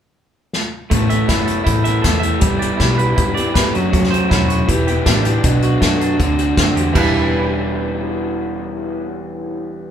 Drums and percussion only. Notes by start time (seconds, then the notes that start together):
0.53 snare
0.91 kick, closed hi-hat
1.10 closed hi-hat
1.29 kick, snare, closed hi-hat
1.48 closed hi-hat
1.67 kick, closed hi-hat
1.85 closed hi-hat
2.04 kick, snare, closed hi-hat
2.23 closed hi-hat
2.41 kick, closed hi-hat
2.62 closed hi-hat
2.80 kick, snare, closed hi-hat
2.99 closed hi-hat
3.18 kick, closed hi-hat
3.37 closed hi-hat
3.55 kick, snare, closed hi-hat
3.75 closed hi-hat
3.93 kick, closed hi-hat
4.03 snare
4.14 closed hi-hat
4.31 kick, snare, closed hi-hat
4.50 closed hi-hat
4.69 kick, closed hi-hat
4.88 closed hi-hat
5.06 kick, snare, closed hi-hat
5.25 closed hi-hat
5.44 kick, closed hi-hat
5.62 closed hi-hat
5.82 kick, snare, closed hi-hat
6.01 closed hi-hat
6.20 kick, closed hi-hat
6.39 closed hi-hat
6.57 kick, snare, closed hi-hat
6.77 closed hi-hat
6.95 kick, crash